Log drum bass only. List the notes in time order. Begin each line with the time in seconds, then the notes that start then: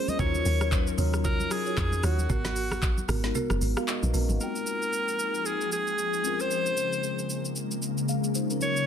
0.19 D#2
0.45 D#2
0.98 D#2
1.78 F2
2.03 D#2
2.30 G#1
3.09 G#1
3.50 F#1
3.61 G#1
4.03 A#1
4.14 A#1
4.29 G#1